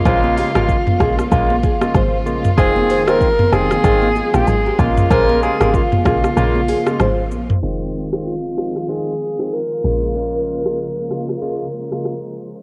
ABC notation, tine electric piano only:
X:1
M:4/4
L:1/16
Q:"Swing 16ths" 1/4=95
K:Bbdor
V:1 name="Tine electric piano"
[D,A,B,F]3 [D,A,B,F] z2 [D,A,B,F] z [D,A,B,F] z2 [D,A,B,F] z2 [D,A,B,F] z | [E,A,CF]3 [E,A,CF] z2 [E,A,CF] z [E,A,CF] z2 [E,A,CF] z2 [D,A,B,F]2 | [D,A,B,F]3 [D,A,B,F] z2 [D,A,B,F] z [D,A,B,F] z2 [D,A,B,F] z4 | [E,A,CF]3 [E,A,CF] z2 [E,A,CF] z [E,A,CF] z2 [E,A,CF] z2 [D,A,B,F]2 |
[D,A,B,F]3 [D,A,B,F] z2 [D,A,B,F] z [D,A,B,F] z2 [D,A,B,F] z4 |]